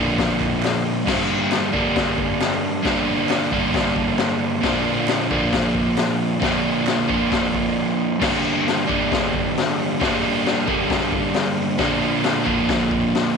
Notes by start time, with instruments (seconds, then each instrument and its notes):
Already playing: overdriven electric guitar A#2 D3 F3 A#3 D4
0.18 kick, snare, open hi-hat
0.40 kick, clap
0.63 snare, clap, open hi-hat
1.06 overdriven electric guitar G2 D3 G3 A#3 D4, kick, snare, crash
1.51 snare, clap, open hi-hat
1.73 overdriven electric guitar G2 D3 G3 A#3 D4, kick
1.96 kick, snare, open hi-hat
2.18 kick
2.40 snare, clap, open hi-hat
2.82 overdriven electric guitar G2 D3 G3 A#3, kick, snare, open hi-hat
2.87 overdriven electric guitar D4
3.29 snare, clap, open hi-hat
3.52 overdriven electric guitar G2 D3 G3 A#3 D4, kick
3.74 kick, snare, open hi-hat
3.96 kick
4.18 snare, clap, open hi-hat
4.62 overdriven electric guitar A#2 D3 F3 A#3 D4, kick, snare, open hi-hat
5.08 snare, clap, open hi-hat
5.30 overdriven electric guitar A#2 D3 F3 A#3 D4, kick
5.53 kick, snare, open hi-hat
5.75 kick
5.97 snare, clap, open hi-hat
6.40 overdriven electric guitar A#2 D3 F3 A#3 D4, kick, snare, open hi-hat
6.87 snare, clap, open hi-hat
7.08 overdriven electric guitar A#2 D3 F3 A#3 D4, kick
7.32 kick, snare, open hi-hat
7.54 kick
8.20 overdriven electric guitar G2 D3 G3 A#3 D4, kick, snare, crash
8.68 snare, open hi-hat
8.87 overdriven electric guitar G2 D3 G3 A#3 D4, kick
9.12 kick, snare, open hi-hat
9.34 kick
9.57 snare, open hi-hat
10.00 overdriven electric guitar G2 D3 G3 A#3 D4, kick, snare, open hi-hat
10.46 snare, open hi-hat
10.66 overdriven electric guitar G2 D3 G3 A#3 D4, kick
10.90 kick, snare, open hi-hat
11.12 kick
11.34 snare, open hi-hat
11.78 overdriven electric guitar A#2 D3 F3 A#3 D4, kick, snare, open hi-hat
12.24 snare, open hi-hat
12.44 overdriven electric guitar A#2 D3 F3 A#3 D4, kick
12.69 kick, snare, open hi-hat
12.91 kick
13.15 snare, open hi-hat